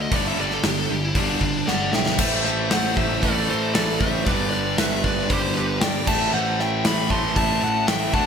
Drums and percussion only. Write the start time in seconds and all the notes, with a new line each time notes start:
0.12 kick, open hi-hat
0.51 snare
0.63 snare, open hi-hat
1.15 kick, open hi-hat
1.41 kick
1.68 snare
1.93 snare
2.06 snare
2.19 kick, crash
2.45 snare
2.71 snare, open hi-hat
2.97 kick
3.23 kick, open hi-hat
3.75 snare, open hi-hat
4.01 kick
4.26 kick, open hi-hat
4.78 snare, open hi-hat
5.04 kick
5.30 kick, open hi-hat
5.81 snare, open hi-hat
6.07 kick, crash
6.60 snare
6.85 snare, open hi-hat
7.10 kick
7.36 kick, open hi-hat
7.88 snare, open hi-hat
8.14 kick